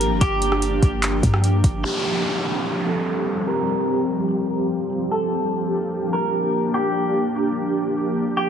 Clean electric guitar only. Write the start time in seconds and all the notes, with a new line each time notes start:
Already playing: A#4
0.21 G4
1.84 G4
2.87 A4
3.48 A#4
5.12 A4
6.13 A#4
6.74 G4
8.37 G4